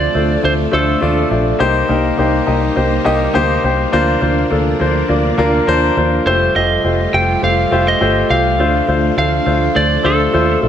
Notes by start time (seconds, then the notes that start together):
Already playing: C3 F3 A3 D4 F4 C5 D5
0.14 D2 A3 D4 F4 C5
0.43 D2 A3 D4 F4 C5 D5
0.71 D2 A3 D4 F4 A4 C5
1.01 D#2 A3 D4 F4 D5
1.31 A#1 A3 D4 F4 D5
1.59 C2 G3 A#3 D#4 G4 C5
1.88 C2 A#3 D#4 G4 A#4
2.17 C2 A#3 D#4 G4 C5
2.46 C2 A#3 D#4 G4 D#5
2.76 C2 A#3 D#4 G4 C5
3.04 C2 A#3 D#4 G4 D#5
3.34 D2 A#3 D#4 G4 C5
3.63 C2 A#3 D#4 G4 C5
3.92 D2 F3 A#3 D4 F4 C5
4.21 D2 A#3 D4 F4 C5
4.50 D2 A#3 D4 F4 A4
4.80 D2 A#3 D4 F4 C5
5.08 D2 A#3 D4 F4 D5
5.38 D2 A#3 D4 F4 A#4 D5
5.55 F5
5.67 D#2 A#3 D4 F4 C5 A5
5.84 A#5
5.97 D#2 A#3 D4 F4 C5
6.26 F1 G3 A3 F4 G4 C5
6.55 F1 A3 F4 G4 C5 D#5
6.84 F1 A3 F4 G4 C5
7.13 F1 A3 F4 G4 C5 G5
7.42 F1 A3 F4 G4 C5 F5
7.71 F1 A3 F4 G4 C5
7.88 D#5
8.00 G1 A3 F4 G4 C5
8.29 C2 A3 F4 G4 C5 F5
8.59 D2 F3 A3 D4 F4 C5
8.87 D2 A3 D4 F4 C5
9.16 D2 A3 D4 F4 C5 F5
9.45 D2 A3 D4 F4 C5
9.74 D2 A3 D4 F4 C5 D5
10.03 D2 A3 D4 F4 A4 C5
10.33 D#2 A3 D4 F4 C5
10.62 A#1 A3 D4 F4 A4